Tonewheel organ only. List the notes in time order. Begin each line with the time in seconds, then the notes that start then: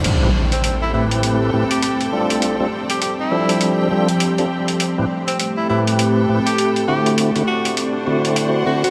0.22 A2 C4 E4 G4 B4
0.94 A2 C4 E4 G4 B4
1.53 A2 C4 E4 G4 B4
2.12 G3 C4 D4 F4 A4
2.60 G3 C4 D4 F4 A4
3.31 F3 G3 C4 D4 A4
3.91 G3 C4 D4 F4 A4
4.39 G3 C4 D4 F4 A4
4.98 A2 C4 E4 G4 B4
5.69 A2 C4 E4 G4 B4
6.29 A2 C4 E4 G4 B4
6.88 D3 A3 C4 E4 F#4
7.36 D3 A3 C4 E4 F#4
8.07 D3 A3 C4 E4 F#4
8.66 D3 A3 C4 E4 F#4